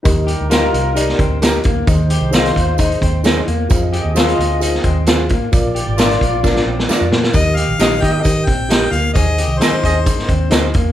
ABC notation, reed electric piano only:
X:1
M:4/4
L:1/8
Q:1/4=132
K:Eb
V:1 name="Reed electric piano"
[EGBe] z [EGBe] z [EGBd] z [EGBe] z | [EAce] z [EAce] z [EAce] z [EAce] z | [FAcf] z [FAcf] z [FAcf] z [FAcf] z | [FBdf] z [FBdf] z [FBdf] z [FBdf] z |
[EGBe] z [EGBe] z [EGBe] z [EGBe] z | [EAce] z [EAce] z [EAce] z [EAce] z |]
V:2 name="Reed electric piano" clef=bass
z8 | E,3 z4 z | z8 | B,,3 z4 z |
E,3 z4 z | E,3 z4 z |]